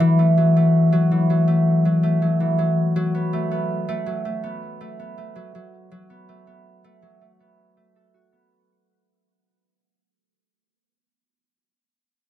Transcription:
0.00 1.10 E3 medium
0.00 0.36 F#3 medium
0.00 0.18 A3 medium
0.19 0.56 A3 medium
0.37 0.91 F#3 medium
0.56 1.47 A3 medium
0.93 1.29 F#3 medium
1.11 2.39 E3 medium
1.30 1.84 F#3 medium
1.48 2.03 A3 medium
1.85 2.21 F#3 medium
2.03 3.33 A3 medium
2.22 2.57 F#3 medium
2.40 2.64 E3 medium
2.58 2.95 F#3 medium
2.96 4.05 F#3 medium
3.15 3.51 B3 medium
3.33 3.88 A3 medium
3.51 4.43 B3 medium
3.89 4.25 A3 medium
4.06 5.34 F#3 medium
4.25 4.80 A3 medium
4.44 4.99 B3 medium
4.81 5.17 A3 medium
5.00 6.10 B3 medium
5.18 6.28 A3 medium
5.36 5.54 F#3 medium
5.55 5.90 F#3 medium
5.92 7.01 F#3 medium
6.10 6.47 B3 medium
6.29 6.84 A3 medium
6.47 7.40 B3 medium
6.84 7.21 A3 medium
7.02 8.57 F#3 medium
7.21 7.76 A3 medium
7.40 8.32 B3 medium
7.77 11.10 A3 medium
7.96 10.16 A4 medium
8.14 10.58 F#4 medium
8.33 11.43 B3 medium

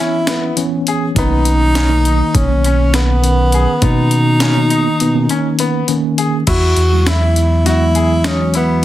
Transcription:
0.00 0.51 E3 medium
0.00 0.51 B3 medium
0.00 0.15 C#4 medium
0.00 0.51 C#4 medium
0.00 0.84 E4 medium
0.27 0.61 B3 medium
0.27 snare medium
0.27 closed hi-hat medium
0.56 1.11 E3 medium
0.56 1.11 B3 medium
0.56 1.11 C#4 loud
0.56 1.12 C#5 medium
0.56 closed hi-hat medium
0.87 1.04 G#4 medium
0.87 closed hi-hat medium
1.14 2.22 B1 medium
1.14 1.83 D#3 medium
1.14 1.83 A#3 medium
1.14 1.83 C#4 medium
1.14 2.37 D#4 loud
1.14 kick loud
1.14 closed hi-hat medium
1.18 1.49 B3 medium
1.45 closed hi-hat medium
1.75 1.92 C#4 medium
1.75 snare loud
1.75 closed hi-hat medium
1.88 2.43 D#3 medium
1.88 2.43 A#3 medium
1.88 2.43 D#4 loud
2.05 2.38 D#4 medium
2.05 closed hi-hat medium
2.35 3.67 B1 loud
2.35 2.96 C#4 medium
2.35 kick loud
2.35 closed hi-hat medium
2.48 3.16 D#3 medium
2.48 3.16 A#3 medium
2.48 3.16 C#4 medium
2.64 2.81 C#4 medium
2.64 closed hi-hat medium
2.94 3.85 B3 medium
2.94 3.26 B3 medium
2.94 snare loud
2.94 closed hi-hat medium
3.21 3.76 D#3 medium
3.21 3.76 C#4 medium
3.21 3.76 A#4 medium
3.21 closed hi-hat medium
3.52 3.70 G#4 medium
3.52 closed hi-hat medium
3.81 4.88 B2 medium
3.81 4.49 D#3 medium
3.81 4.49 A#3 medium
3.81 4.14 B3 medium
3.81 4.49 C#4 medium
3.81 5.89 D#4 medium
3.81 kick loud
3.81 closed hi-hat medium
4.11 closed hi-hat medium
4.40 4.58 C#4 medium
4.40 snare loud
4.40 closed hi-hat medium
4.56 5.10 D#3 medium
4.56 5.10 A#3 medium
4.56 5.10 D#4 medium
4.70 5.02 D#4 medium
4.70 closed hi-hat medium
5.00 5.27 B2 loud
5.00 closed hi-hat medium
5.14 5.82 D#3 medium
5.14 5.81 A#3 medium
5.14 5.82 C#4 medium
5.29 5.46 C#4 medium
5.29 closed hi-hat medium
5.59 5.91 B3 medium
5.59 closed hi-hat medium
5.88 6.42 D#3 medium
5.88 6.42 A#3 medium
5.88 6.42 C#4 loud
5.88 closed hi-hat medium
6.18 6.34 G#4 medium
6.18 closed hi-hat medium
6.47 6.74 E2 loud
6.47 6.79 E4 medium
6.47 7.10 F#4 medium
6.47 kick medium
6.47 closed hi-hat medium
6.47 crash medium
6.76 8.85 E2 medium
6.76 closed hi-hat medium
6.92 7.59 F#3 medium
6.92 7.59 G#3 soft
6.92 7.59 E4 medium
7.07 7.38 E4 medium
7.07 7.67 E4 medium
7.07 snare loud
7.07 closed hi-hat medium
7.36 closed hi-hat medium
7.65 8.19 F#3 medium
7.65 8.19 G#3 medium
7.65 8.19 B3 medium
7.65 8.29 E4 medium
7.65 7.82 F#4 medium
7.65 snare soft
7.65 closed hi-hat medium
7.95 8.11 G#4 medium
7.95 closed hi-hat soft
8.24 8.85 F#3 medium
8.24 8.85 G#3 medium
8.24 8.56 C#4 medium
8.24 8.41 D#4 medium
8.24 8.85 F#4 medium
8.24 snare medium
8.24 closed hi-hat medium
8.54 8.85 B3 medium
8.54 8.85 E4 medium
8.54 closed hi-hat medium

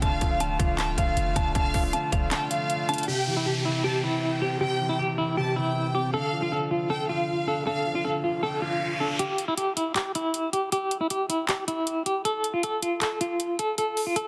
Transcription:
0.02 0.20 D1 loud
0.02 0.39 D3 medium
0.02 3.05 D3 medium
0.02 3.05 A3 medium
0.02 3.05 F4 loud
0.02 0.38 F5 loud
0.02 0.29 A5 loud
0.02 kick loud
0.02 closed hi-hat medium
0.21 0.58 D1 loud
0.21 0.58 F3 medium
0.21 kick loud
0.21 closed hi-hat medium
0.31 0.39 F5 medium
0.40 0.77 D3 medium
0.40 0.57 A5 medium
0.40 closed hi-hat medium
0.59 0.96 D1 loud
0.59 0.97 F3 medium
0.59 0.76 F5 medium
0.59 kick loud
0.59 closed hi-hat loud
0.78 1.54 D3 medium
0.78 0.97 G5 medium
0.78 0.95 A5 medium
0.78 clap loud
0.78 closed hi-hat medium
0.97 1.16 D1 loud
0.97 1.73 F3 medium
0.97 1.51 F5 medium
0.97 1.34 F5 medium
0.97 kick medium
0.97 closed hi-hat medium
1.17 1.35 F1 loud
1.17 closed hi-hat medium
1.36 1.54 D1 loud
1.36 2.31 D4 medium
1.36 1.53 A5 medium
1.36 kick medium
1.36 closed hi-hat medium
1.55 1.73 D1 loud
1.55 1.92 D3 medium
1.55 1.91 F5 loud
1.55 1.82 A5 loud
1.55 kick loud
1.55 closed hi-hat medium
1.74 1.93 D1 loud
1.74 2.11 F3 medium
1.74 kick loud
1.74 open hi-hat medium
1.84 1.92 F5 medium
1.93 2.30 D3 medium
1.93 2.10 A5 medium
1.93 closed hi-hat medium
2.12 2.31 D1 loud
2.12 2.49 F3 medium
2.12 2.29 F5 medium
2.12 kick loud
2.12 closed hi-hat medium
2.31 3.08 D3 medium
2.31 2.50 G5 medium
2.31 2.48 A5 loud
2.31 clap loud
2.31 closed hi-hat medium
2.51 3.08 F3 medium
2.51 3.04 F5 medium
2.51 2.86 F5 medium
2.51 closed hi-hat medium
2.70 closed hi-hat medium
2.89 3.08 D4 medium
2.89 3.06 A5 medium
2.89 closed hi-hat soft
2.94 closed hi-hat medium
2.98 closed hi-hat medium
3.03 closed hi-hat medium
3.08 3.45 C3 medium
3.08 3.35 G4 medium
3.08 3.44 G5 loud
3.08 downlifter medium
3.27 3.64 E3 medium
3.37 3.45 E4 medium
3.46 3.83 C3 medium
3.46 3.63 G4 medium
3.65 4.02 E3 medium
3.65 3.82 E4 medium
3.84 4.59 C3 medium
3.84 4.01 G4 medium
3.84 4.03 A5 medium
4.03 4.79 E3 medium
4.03 4.40 E4 medium
4.03 4.57 G5 medium
4.42 5.37 C4 medium
4.42 4.58 G4 medium
4.60 4.98 C3 medium
4.60 4.88 G4 medium
4.60 4.97 G5 loud
4.80 5.17 E3 medium
4.89 4.98 E4 medium
4.99 5.36 C3 medium
4.99 5.16 G4 medium
5.18 5.55 E3 medium
5.18 5.35 E4 medium
5.37 6.14 C3 medium
5.37 5.54 G4 medium
5.37 5.55 A5 medium
5.56 6.14 E3 medium
5.56 5.92 E4 medium
5.56 6.10 G5 medium
5.95 6.14 C4 medium
5.95 6.11 G4 medium
6.13 6.50 D3 medium
6.13 6.41 A4 loud
6.13 6.50 F5 loud
6.33 6.70 F3 medium
6.42 6.51 F4 medium
6.52 6.88 D3 medium
6.52 6.69 A4 medium
6.71 7.08 F3 medium
6.71 6.88 F4 medium
6.90 7.65 D3 medium
6.90 7.07 A4 medium
6.90 7.08 G5 medium
7.09 7.84 F3 medium
7.09 7.45 F4 medium
7.09 7.63 F5 medium
7.47 8.43 D4 medium
7.47 7.64 A4 medium
7.66 8.03 D3 medium
7.66 7.94 A4 medium
7.66 8.02 F5 loud
7.66 riser medium
7.86 8.23 F3 medium
7.95 8.03 F4 medium
8.05 8.41 D3 medium
8.05 8.21 A4 medium
8.24 8.61 F3 medium
8.24 8.41 F4 medium
8.43 9.19 D3 medium
8.43 8.60 A4 loud
8.43 8.61 G5 medium
8.62 9.20 F3 medium
8.62 8.98 F4 medium
8.62 9.16 F5 medium
9.00 9.19 D4 medium
9.00 9.17 A4 medium
9.19 9.46 G4 loud
9.19 closed hi-hat medium
9.38 closed hi-hat medium
9.48 9.56 E4 medium
9.57 9.74 G4 medium
9.57 closed hi-hat medium
9.77 9.93 E4 medium
9.77 closed hi-hat medium
9.96 10.12 G4 medium
9.96 clap loud
9.96 closed hi-hat medium
10.15 10.51 E4 medium
10.15 closed hi-hat medium
10.34 closed hi-hat medium
10.53 10.70 G4 medium
10.53 closed hi-hat medium
10.72 10.99 G4 loud
10.72 closed hi-hat medium
10.91 closed hi-hat medium
11.01 11.09 E4 medium
11.10 11.27 G4 medium
11.10 closed hi-hat medium
11.30 11.46 E4 medium
11.30 closed hi-hat medium
11.49 11.65 G4 medium
11.49 clap loud
11.49 closed hi-hat medium
11.68 12.04 E4 medium
11.68 closed hi-hat medium
11.87 closed hi-hat medium
12.06 12.23 G4 medium
12.06 closed hi-hat medium
12.25 12.52 A4 loud
12.25 closed hi-hat medium
12.44 closed hi-hat medium
12.54 12.62 F4 medium
12.63 12.80 A4 medium
12.63 closed hi-hat medium
12.82 12.99 F4 medium
12.82 closed hi-hat medium
13.01 13.18 A4 medium
13.01 clap loud
13.01 closed hi-hat medium
13.21 13.57 F4 medium
13.21 closed hi-hat medium
13.40 closed hi-hat medium
13.59 13.76 A4 medium
13.59 closed hi-hat medium
13.78 14.05 A4 medium
13.78 closed hi-hat medium
13.97 open hi-hat medium
14.07 14.15 F4 medium
14.16 14.28 A4 medium
14.16 closed hi-hat medium

